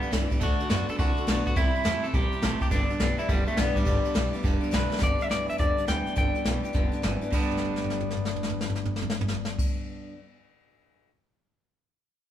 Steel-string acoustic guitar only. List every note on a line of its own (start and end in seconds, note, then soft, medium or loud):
0.02 0.11 G3 soft
0.02 0.12 B3 medium
0.02 0.12 D4 medium
0.02 0.12 G4 medium
0.12 0.31 G2 medium
0.12 0.31 D3 medium
0.12 0.31 G3 medium
0.12 0.31 B3 medium
0.12 0.30 D4 medium
0.12 0.29 G4 medium
0.30 0.41 G3 soft
0.30 0.41 B3 medium
0.30 0.40 D4 medium
0.30 0.41 G4 medium
0.41 0.60 D3 medium
0.41 0.60 A3 medium
0.41 0.60 D4 medium
0.41 0.59 F#4 medium
0.41 0.57 A4 medium
0.59 0.69 D4 soft
0.59 0.70 F#4 medium
0.59 0.69 A4 soft
0.70 0.88 D3 medium
0.70 0.89 A3 medium
0.70 0.89 D4 medium
0.70 0.89 F#4 medium
0.70 0.87 A4 medium
0.89 0.98 D4 soft
0.89 0.99 F#4 soft
0.89 0.99 A4 medium
0.98 1.17 A3 medium
0.98 1.18 D4 medium
0.98 1.17 F#4 medium
0.98 1.15 A4 medium
1.17 1.27 D4 soft
1.17 1.27 F#4 medium
1.17 1.27 A4 medium
1.27 1.46 D3 medium
1.27 1.46 A3 medium
1.27 1.46 D4 medium
1.27 1.46 F#4 medium
1.27 1.45 A4 loud
1.46 1.56 D4 medium
1.46 1.57 F#4 medium
1.46 1.56 A4 medium
1.56 1.75 C3 medium
1.56 1.75 G3 medium
1.56 1.75 C4 medium
1.56 1.74 E4 medium
1.56 1.73 G4 medium
1.74 1.84 C4 soft
1.74 1.84 E4 medium
1.74 1.85 G4 medium
1.84 2.03 C3 medium
1.84 2.03 G3 medium
1.84 2.04 C4 medium
1.84 2.04 E4 medium
1.84 2.03 G4 medium
2.04 2.14 C4 soft
2.04 2.14 E4 soft
2.04 2.14 G4 medium
2.14 2.32 G3 medium
2.14 2.33 C4 medium
2.14 2.32 E4 medium
2.14 2.31 G4 medium
2.32 2.42 C4 soft
2.32 2.42 E4 medium
2.32 2.42 G4 medium
2.42 2.61 C3 medium
2.42 2.61 G3 medium
2.42 2.62 C4 medium
2.42 2.60 E4 medium
2.42 2.59 G4 medium
2.60 2.71 C4 soft
2.60 2.71 E4 medium
2.60 2.71 G4 medium
2.71 2.90 G2 medium
2.71 2.90 D3 medium
2.71 2.90 G3 medium
2.71 2.90 B3 medium
2.71 2.90 D4 loud
2.71 2.89 G4 medium
2.90 2.99 G3 medium
2.90 3.00 B3 medium
2.90 3.00 D4 medium
2.90 3.00 G4 medium
3.00 3.18 G2 medium
3.00 3.19 D3 medium
3.00 3.19 G3 medium
3.00 3.19 B3 medium
3.00 3.18 D4 medium
3.00 3.17 G4 medium
3.18 3.27 G3 soft
3.18 3.28 B3 medium
3.18 3.29 D4 soft
3.18 3.28 G4 medium
3.29 3.47 G3 medium
3.29 3.47 B3 medium
3.29 3.46 D4 medium
3.29 3.45 G4 medium
3.46 3.56 G3 medium
3.46 3.57 B3 medium
3.46 3.57 D4 medium
3.46 3.57 G4 medium
3.57 3.76 G2 medium
3.57 3.76 D3 medium
3.57 3.76 G3 medium
3.57 3.76 B3 medium
3.57 3.76 D4 medium
3.57 3.75 G4 medium
3.76 3.85 G3 soft
3.76 3.86 B3 soft
3.76 3.86 D4 medium
3.76 3.86 G4 medium
3.85 4.04 G2 medium
3.85 4.05 D3 medium
3.85 4.05 G3 medium
3.85 4.05 B3 medium
3.85 4.04 D4 medium
3.85 4.04 G4 medium
4.05 4.14 G3 medium
4.05 4.15 B3 medium
4.05 4.15 D4 medium
4.05 4.15 G4 medium
4.14 4.33 G2 medium
4.14 4.34 D3 medium
4.14 4.34 G3 loud
4.14 4.34 B3 medium
4.14 4.33 D4 medium
4.14 4.32 G4 loud
4.33 4.41 G3 medium
4.33 4.42 B3 medium
4.33 4.43 D4 medium
4.33 4.43 G4 medium
4.43 4.62 G3 medium
4.43 4.62 B3 medium
4.43 4.61 D4 medium
4.43 4.59 G4 medium
4.61 4.71 G3 medium
4.61 4.71 B3 medium
4.61 4.72 D4 medium
4.61 4.72 G4 medium
4.71 4.91 G2 medium
4.71 4.91 D3 medium
4.71 4.91 G3 loud
4.71 4.90 B3 loud
4.71 4.89 D4 loud
4.71 4.88 G4 loud
4.89 5.00 G3 medium
4.89 5.00 B3 medium
4.89 5.00 D4 medium
4.89 5.01 G4 medium
5.00 5.19 G2 medium
5.00 5.19 D3 medium
5.00 5.20 G3 medium
5.00 5.19 B3 medium
5.00 5.18 D4 medium
5.00 5.17 G4 medium
5.18 5.28 G3 soft
5.18 5.29 B3 medium
5.18 5.30 D4 medium
5.18 5.29 G4 medium
5.29 5.48 G3 medium
5.29 5.47 B3 medium
5.29 5.47 D4 medium
5.47 5.57 G3 soft
5.47 5.58 B3 soft
5.47 5.58 D4 soft
5.47 5.58 G4 soft
5.58 5.77 G2 medium
5.58 5.77 D3 medium
5.58 5.77 G3 medium
5.58 5.77 B3 medium
5.58 5.77 D4 medium
5.58 5.76 G4 medium
5.77 5.85 G3 soft
5.77 5.86 B3 medium
5.77 5.87 D4 medium
5.77 5.87 G4 medium
5.87 6.06 G3 medium
5.87 6.06 B3 medium
5.87 6.05 D4 medium
5.87 6.05 G4 medium
6.06 6.15 G3 soft
6.06 6.15 B3 soft
6.06 6.16 D4 medium
6.06 6.16 G4 medium
6.16 6.35 G2 medium
6.16 6.35 D3 medium
6.16 6.35 G3 medium
6.16 6.35 B3 medium
6.16 6.35 D4 medium
6.16 6.33 G4 medium
6.35 6.43 G3 soft
6.35 6.44 B3 soft
6.35 6.45 D4 medium
6.35 6.45 G4 medium
6.44 6.64 G3 medium
6.44 6.64 B3 medium
6.44 6.63 D4 medium
6.44 6.62 G4 medium
6.63 6.72 G3 soft
6.63 6.73 B3 soft
6.63 6.74 D4 medium
6.63 6.74 G4 medium
6.73 6.92 G2 medium
6.73 6.93 D3 medium
6.73 6.93 G3 medium
6.73 6.93 B3 medium
6.73 6.92 D4 medium
6.73 6.91 G4 medium
6.92 7.01 G3 soft
6.92 7.02 B3 medium
6.92 7.03 D4 medium
6.92 7.03 G4 medium
7.02 7.21 G3 medium
7.02 7.22 B3 medium
7.02 7.21 D4 medium
7.02 7.20 G4 medium
7.21 7.33 G3 medium
7.21 7.33 B3 medium
7.21 7.32 D4 medium
7.21 7.32 G4 medium
7.26 10.18 G2 medium
7.30 10.18 D3 medium
7.30 10.18 G3 medium
7.37 10.18 B3 medium
7.37 10.18 D4 medium
7.43 10.18 G4 medium